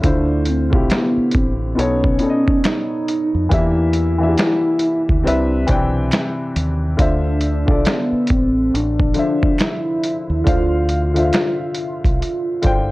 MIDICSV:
0, 0, Header, 1, 6, 480
1, 0, Start_track
1, 0, Tempo, 869565
1, 17, Time_signature, 4, 2, 24, 8
1, 7129, End_track
2, 0, Start_track
2, 0, Title_t, "Upright piano"
2, 0, Program_c, 0, 0
2, 0, Control_c, 0, 64, 127
2, 7, Note_on_c, 0, 50, 71
2, 13, Note_on_c, 0, 57, 67
2, 19, Note_on_c, 0, 64, 66
2, 25, Control_c, 0, 64, 0
2, 25, Note_on_c, 0, 65, 64
2, 31, Note_on_c, 0, 72, 80
2, 106, Control_c, 0, 64, 127
2, 336, Note_off_c, 0, 50, 0
2, 339, Note_off_c, 0, 57, 0
2, 342, Note_off_c, 0, 64, 0
2, 345, Note_off_c, 0, 65, 0
2, 348, Note_off_c, 0, 72, 0
2, 386, Note_on_c, 0, 50, 71
2, 394, Note_on_c, 0, 57, 66
2, 399, Note_on_c, 0, 64, 62
2, 407, Note_on_c, 0, 65, 61
2, 411, Note_on_c, 0, 67, 78
2, 966, Note_on_c, 0, 47, 76
2, 971, Note_off_c, 0, 50, 0
2, 972, Note_on_c, 0, 59, 65
2, 975, Note_off_c, 0, 57, 0
2, 977, Note_off_c, 0, 64, 0
2, 978, Note_on_c, 0, 63, 65
2, 981, Note_off_c, 0, 65, 0
2, 983, Note_off_c, 0, 67, 0
2, 984, Control_c, 0, 64, 0
2, 984, Note_on_c, 0, 69, 64
2, 991, Note_on_c, 0, 73, 80
2, 1077, Control_c, 0, 64, 127
2, 1185, Note_off_c, 0, 47, 0
2, 1188, Note_off_c, 0, 59, 0
2, 1191, Note_off_c, 0, 63, 0
2, 1194, Note_off_c, 0, 69, 0
2, 1197, Note_off_c, 0, 73, 0
2, 1207, Note_on_c, 0, 47, 63
2, 1213, Note_on_c, 0, 59, 56
2, 1219, Note_on_c, 0, 63, 60
2, 1227, Note_on_c, 0, 69, 62
2, 1231, Note_on_c, 0, 74, 60
2, 1267, Note_off_c, 0, 74, 0
2, 1268, Note_on_c, 0, 75, 75
2, 1852, Note_off_c, 0, 47, 0
2, 1855, Note_off_c, 0, 59, 0
2, 1858, Note_off_c, 0, 63, 0
2, 1862, Note_off_c, 0, 69, 0
2, 1882, Note_off_c, 0, 75, 0
2, 1927, Note_on_c, 0, 52, 73
2, 1932, Note_on_c, 0, 58, 72
2, 1939, Note_on_c, 0, 62, 68
2, 1945, Control_c, 0, 64, 0
2, 1945, Note_on_c, 0, 67, 69
2, 1951, Note_on_c, 0, 76, 83
2, 2027, Control_c, 0, 64, 127
2, 2256, Note_off_c, 0, 52, 0
2, 2258, Note_off_c, 0, 58, 0
2, 2262, Note_off_c, 0, 62, 0
2, 2265, Note_off_c, 0, 67, 0
2, 2268, Note_off_c, 0, 76, 0
2, 2309, Note_on_c, 0, 52, 69
2, 2315, Note_on_c, 0, 58, 60
2, 2321, Note_on_c, 0, 62, 65
2, 2328, Note_on_c, 0, 66, 54
2, 2335, Note_on_c, 0, 76, 78
2, 2353, Note_off_c, 0, 66, 0
2, 2363, Note_on_c, 0, 67, 64
2, 2888, Note_on_c, 0, 48, 87
2, 2892, Note_off_c, 0, 52, 0
2, 2893, Note_off_c, 0, 62, 0
2, 2894, Note_on_c, 0, 60, 82
2, 2895, Note_off_c, 0, 58, 0
2, 2901, Note_on_c, 0, 62, 82
2, 2904, Note_off_c, 0, 76, 0
2, 2905, Control_c, 0, 64, 0
2, 2907, Note_on_c, 0, 71, 87
2, 2912, Note_on_c, 0, 76, 96
2, 2919, Note_off_c, 0, 67, 0
2, 3017, Control_c, 0, 64, 127
2, 3106, Note_off_c, 0, 48, 0
2, 3109, Note_off_c, 0, 60, 0
2, 3112, Note_off_c, 0, 62, 0
2, 3115, Note_off_c, 0, 71, 0
2, 3118, Note_off_c, 0, 76, 0
2, 3127, Note_on_c, 0, 52, 82
2, 3133, Note_on_c, 0, 60, 75
2, 3140, Note_on_c, 0, 62, 77
2, 3147, Note_on_c, 0, 71, 74
2, 3152, Note_on_c, 0, 79, 90
2, 3772, Note_off_c, 0, 52, 0
2, 3775, Note_off_c, 0, 60, 0
2, 3778, Note_off_c, 0, 62, 0
2, 3782, Note_off_c, 0, 71, 0
2, 3784, Note_off_c, 0, 79, 0
2, 3848, Note_on_c, 0, 50, 78
2, 3853, Note_on_c, 0, 62, 70
2, 3859, Note_on_c, 0, 65, 74
2, 3864, Control_c, 0, 64, 0
2, 3865, Note_on_c, 0, 72, 71
2, 3872, Note_on_c, 0, 76, 82
2, 3973, Control_c, 0, 64, 127
2, 4176, Note_off_c, 0, 50, 0
2, 4179, Note_off_c, 0, 62, 0
2, 4182, Note_off_c, 0, 65, 0
2, 4185, Note_off_c, 0, 72, 0
2, 4188, Note_off_c, 0, 76, 0
2, 4229, Note_on_c, 0, 50, 71
2, 4234, Note_on_c, 0, 62, 68
2, 4241, Note_on_c, 0, 65, 64
2, 4248, Note_on_c, 0, 69, 66
2, 4254, Note_on_c, 0, 74, 82
2, 4958, Note_off_c, 0, 50, 0
2, 4961, Note_off_c, 0, 62, 0
2, 4965, Note_off_c, 0, 65, 0
2, 4968, Note_off_c, 0, 69, 0
2, 4971, Note_off_c, 0, 74, 0
2, 5044, Note_on_c, 0, 50, 72
2, 5052, Note_on_c, 0, 62, 63
2, 5058, Note_on_c, 0, 53, 61
2, 5064, Note_on_c, 0, 72, 63
2, 5070, Note_on_c, 0, 76, 77
2, 5691, Note_off_c, 0, 50, 0
2, 5694, Note_off_c, 0, 62, 0
2, 5697, Note_off_c, 0, 53, 0
2, 5700, Note_off_c, 0, 72, 0
2, 5703, Note_off_c, 0, 76, 0
2, 5763, Note_on_c, 0, 50, 81
2, 5771, Note_on_c, 0, 62, 67
2, 5776, Note_on_c, 0, 65, 71
2, 5782, Note_on_c, 0, 72, 71
2, 5788, Note_on_c, 0, 77, 90
2, 6094, Note_off_c, 0, 50, 0
2, 6098, Note_off_c, 0, 62, 0
2, 6100, Note_off_c, 0, 65, 0
2, 6103, Note_off_c, 0, 72, 0
2, 6106, Note_off_c, 0, 77, 0
2, 6149, Note_on_c, 0, 50, 73
2, 6153, Note_on_c, 0, 62, 64
2, 6160, Note_on_c, 0, 65, 62
2, 6166, Note_on_c, 0, 72, 62
2, 6171, Note_on_c, 0, 76, 64
2, 6194, Note_off_c, 0, 76, 0
2, 6208, Note_on_c, 0, 77, 75
2, 6878, Note_off_c, 0, 50, 0
2, 6881, Note_off_c, 0, 62, 0
2, 6884, Note_off_c, 0, 65, 0
2, 6887, Note_off_c, 0, 72, 0
2, 6908, Note_off_c, 0, 77, 0
2, 6966, Note_on_c, 0, 50, 75
2, 6971, Note_on_c, 0, 62, 70
2, 6978, Note_on_c, 0, 65, 68
2, 6983, Note_on_c, 0, 72, 76
2, 6990, Note_on_c, 0, 79, 89
2, 7129, Note_off_c, 0, 50, 0
2, 7129, Note_off_c, 0, 62, 0
2, 7129, Note_off_c, 0, 65, 0
2, 7129, Note_off_c, 0, 72, 0
2, 7129, Note_off_c, 0, 79, 0
2, 7129, End_track
3, 0, Start_track
3, 0, Title_t, "Soft synth lead"
3, 0, Program_c, 1, 80
3, 31, Note_on_c, 1, 62, 94
3, 273, Note_on_c, 1, 60, 88
3, 281, Note_off_c, 1, 62, 0
3, 511, Note_on_c, 1, 59, 87
3, 519, Note_off_c, 1, 60, 0
3, 752, Note_on_c, 1, 60, 78
3, 761, Note_off_c, 1, 59, 0
3, 985, Note_off_c, 1, 60, 0
3, 989, Note_on_c, 1, 61, 103
3, 1470, Note_on_c, 1, 63, 118
3, 1479, Note_off_c, 1, 61, 0
3, 1955, Note_on_c, 1, 64, 107
3, 1963, Note_off_c, 1, 63, 0
3, 3626, Note_off_c, 1, 64, 0
3, 3871, Note_on_c, 1, 62, 94
3, 4349, Note_on_c, 1, 59, 91
3, 4357, Note_off_c, 1, 62, 0
3, 4590, Note_on_c, 1, 60, 81
3, 4598, Note_off_c, 1, 59, 0
3, 4823, Note_off_c, 1, 60, 0
3, 4831, Note_on_c, 1, 62, 104
3, 5310, Note_on_c, 1, 64, 116
3, 5319, Note_off_c, 1, 62, 0
3, 5790, Note_on_c, 1, 65, 113
3, 5798, Note_off_c, 1, 64, 0
3, 7129, Note_off_c, 1, 65, 0
3, 7129, End_track
4, 0, Start_track
4, 0, Title_t, "Fingered electric bass"
4, 0, Program_c, 2, 33
4, 23, Note_on_c, 2, 38, 98
4, 380, Note_off_c, 2, 38, 0
4, 404, Note_on_c, 2, 35, 81
4, 492, Note_off_c, 2, 35, 0
4, 747, Note_on_c, 2, 33, 84
4, 963, Note_off_c, 2, 33, 0
4, 983, Note_on_c, 2, 35, 102
4, 1202, Note_off_c, 2, 35, 0
4, 1847, Note_on_c, 2, 41, 89
4, 1934, Note_off_c, 2, 41, 0
4, 1943, Note_on_c, 2, 40, 97
4, 2398, Note_off_c, 2, 40, 0
4, 2815, Note_on_c, 2, 38, 84
4, 2898, Note_off_c, 2, 38, 0
4, 2901, Note_on_c, 2, 36, 109
4, 3120, Note_off_c, 2, 36, 0
4, 3144, Note_on_c, 2, 35, 90
4, 3362, Note_off_c, 2, 35, 0
4, 3623, Note_on_c, 2, 39, 93
4, 3841, Note_off_c, 2, 39, 0
4, 3864, Note_on_c, 2, 38, 95
4, 4220, Note_off_c, 2, 38, 0
4, 4242, Note_on_c, 2, 35, 85
4, 4331, Note_off_c, 2, 35, 0
4, 4585, Note_on_c, 2, 33, 88
4, 4803, Note_off_c, 2, 33, 0
4, 4822, Note_on_c, 2, 33, 95
4, 5041, Note_off_c, 2, 33, 0
4, 5684, Note_on_c, 2, 39, 91
4, 5772, Note_off_c, 2, 39, 0
4, 5782, Note_on_c, 2, 38, 100
4, 6237, Note_off_c, 2, 38, 0
4, 6653, Note_on_c, 2, 36, 83
4, 6737, Note_off_c, 2, 36, 0
4, 6983, Note_on_c, 2, 31, 90
4, 7129, Note_off_c, 2, 31, 0
4, 7129, End_track
5, 0, Start_track
5, 0, Title_t, "Muted fingered electric bass strokes"
5, 648, Note_on_c, 9, 29, 47
5, 703, Note_off_c, 9, 29, 0
5, 4484, Note_on_c, 9, 29, 48
5, 4539, Note_off_c, 9, 29, 0
5, 7129, End_track
6, 0, Start_track
6, 0, Title_t, "Drums"
6, 19, Note_on_c, 9, 42, 78
6, 20, Note_on_c, 9, 36, 95
6, 74, Note_off_c, 9, 42, 0
6, 76, Note_off_c, 9, 36, 0
6, 250, Note_on_c, 9, 42, 61
6, 306, Note_off_c, 9, 42, 0
6, 402, Note_on_c, 9, 36, 93
6, 457, Note_off_c, 9, 36, 0
6, 496, Note_on_c, 9, 42, 69
6, 502, Note_on_c, 9, 26, 78
6, 505, Note_on_c, 9, 38, 109
6, 511, Note_off_c, 9, 26, 0
6, 511, Note_on_c, 9, 26, 82
6, 551, Note_off_c, 9, 42, 0
6, 561, Note_off_c, 9, 38, 0
6, 567, Note_off_c, 9, 26, 0
6, 725, Note_on_c, 9, 42, 59
6, 743, Note_on_c, 9, 36, 96
6, 781, Note_off_c, 9, 42, 0
6, 798, Note_off_c, 9, 36, 0
6, 988, Note_on_c, 9, 42, 72
6, 1043, Note_off_c, 9, 42, 0
6, 1126, Note_on_c, 9, 36, 91
6, 1181, Note_off_c, 9, 36, 0
6, 1208, Note_on_c, 9, 42, 62
6, 1264, Note_off_c, 9, 42, 0
6, 1367, Note_on_c, 9, 36, 88
6, 1422, Note_off_c, 9, 36, 0
6, 1457, Note_on_c, 9, 26, 73
6, 1457, Note_on_c, 9, 42, 78
6, 1463, Note_on_c, 9, 38, 117
6, 1469, Note_off_c, 9, 26, 0
6, 1469, Note_on_c, 9, 26, 91
6, 1512, Note_off_c, 9, 42, 0
6, 1519, Note_off_c, 9, 38, 0
6, 1525, Note_off_c, 9, 26, 0
6, 1702, Note_on_c, 9, 42, 67
6, 1757, Note_off_c, 9, 42, 0
6, 1940, Note_on_c, 9, 36, 101
6, 1940, Note_on_c, 9, 42, 80
6, 1995, Note_off_c, 9, 36, 0
6, 1995, Note_off_c, 9, 42, 0
6, 2170, Note_on_c, 9, 42, 61
6, 2225, Note_off_c, 9, 42, 0
6, 2415, Note_on_c, 9, 42, 71
6, 2421, Note_on_c, 9, 26, 76
6, 2425, Note_on_c, 9, 38, 111
6, 2431, Note_off_c, 9, 26, 0
6, 2431, Note_on_c, 9, 26, 92
6, 2470, Note_off_c, 9, 42, 0
6, 2480, Note_off_c, 9, 38, 0
6, 2486, Note_off_c, 9, 26, 0
6, 2645, Note_on_c, 9, 42, 62
6, 2701, Note_off_c, 9, 42, 0
6, 2811, Note_on_c, 9, 36, 78
6, 2866, Note_off_c, 9, 36, 0
6, 2910, Note_on_c, 9, 42, 80
6, 2965, Note_off_c, 9, 42, 0
6, 3132, Note_on_c, 9, 42, 64
6, 3141, Note_on_c, 9, 36, 72
6, 3188, Note_off_c, 9, 42, 0
6, 3196, Note_off_c, 9, 36, 0
6, 3374, Note_on_c, 9, 26, 69
6, 3378, Note_on_c, 9, 42, 73
6, 3385, Note_on_c, 9, 38, 109
6, 3391, Note_off_c, 9, 26, 0
6, 3391, Note_on_c, 9, 26, 90
6, 3433, Note_off_c, 9, 42, 0
6, 3440, Note_off_c, 9, 38, 0
6, 3446, Note_off_c, 9, 26, 0
6, 3623, Note_on_c, 9, 42, 67
6, 3678, Note_off_c, 9, 42, 0
6, 3858, Note_on_c, 9, 42, 85
6, 3859, Note_on_c, 9, 36, 104
6, 3914, Note_off_c, 9, 36, 0
6, 3914, Note_off_c, 9, 42, 0
6, 4090, Note_on_c, 9, 42, 57
6, 4145, Note_off_c, 9, 42, 0
6, 4240, Note_on_c, 9, 36, 99
6, 4295, Note_off_c, 9, 36, 0
6, 4334, Note_on_c, 9, 42, 72
6, 4342, Note_on_c, 9, 26, 75
6, 4344, Note_on_c, 9, 38, 117
6, 4350, Note_off_c, 9, 26, 0
6, 4350, Note_on_c, 9, 26, 95
6, 4389, Note_off_c, 9, 42, 0
6, 4399, Note_off_c, 9, 38, 0
6, 4405, Note_off_c, 9, 26, 0
6, 4564, Note_on_c, 9, 42, 67
6, 4581, Note_on_c, 9, 36, 87
6, 4620, Note_off_c, 9, 42, 0
6, 4636, Note_off_c, 9, 36, 0
6, 4827, Note_on_c, 9, 42, 70
6, 4882, Note_off_c, 9, 42, 0
6, 4964, Note_on_c, 9, 36, 94
6, 5019, Note_off_c, 9, 36, 0
6, 5046, Note_on_c, 9, 42, 65
6, 5102, Note_off_c, 9, 42, 0
6, 5205, Note_on_c, 9, 36, 89
6, 5260, Note_off_c, 9, 36, 0
6, 5291, Note_on_c, 9, 26, 69
6, 5297, Note_on_c, 9, 42, 76
6, 5303, Note_on_c, 9, 38, 110
6, 5309, Note_off_c, 9, 26, 0
6, 5309, Note_on_c, 9, 26, 94
6, 5352, Note_off_c, 9, 42, 0
6, 5359, Note_off_c, 9, 38, 0
6, 5365, Note_off_c, 9, 26, 0
6, 5540, Note_on_c, 9, 42, 74
6, 5595, Note_off_c, 9, 42, 0
6, 5778, Note_on_c, 9, 36, 108
6, 5778, Note_on_c, 9, 42, 83
6, 5833, Note_off_c, 9, 36, 0
6, 5833, Note_off_c, 9, 42, 0
6, 6010, Note_on_c, 9, 42, 62
6, 6065, Note_off_c, 9, 42, 0
6, 6161, Note_on_c, 9, 42, 47
6, 6216, Note_off_c, 9, 42, 0
6, 6253, Note_on_c, 9, 42, 69
6, 6258, Note_on_c, 9, 26, 84
6, 6262, Note_on_c, 9, 38, 103
6, 6268, Note_off_c, 9, 26, 0
6, 6268, Note_on_c, 9, 26, 88
6, 6308, Note_off_c, 9, 42, 0
6, 6317, Note_off_c, 9, 38, 0
6, 6324, Note_off_c, 9, 26, 0
6, 6483, Note_on_c, 9, 42, 65
6, 6539, Note_off_c, 9, 42, 0
6, 6649, Note_on_c, 9, 36, 84
6, 6653, Note_on_c, 9, 42, 43
6, 6704, Note_off_c, 9, 36, 0
6, 6709, Note_off_c, 9, 42, 0
6, 6747, Note_on_c, 9, 42, 75
6, 6802, Note_off_c, 9, 42, 0
6, 6970, Note_on_c, 9, 42, 64
6, 6980, Note_on_c, 9, 36, 78
6, 7025, Note_off_c, 9, 42, 0
6, 7035, Note_off_c, 9, 36, 0
6, 7129, End_track
0, 0, End_of_file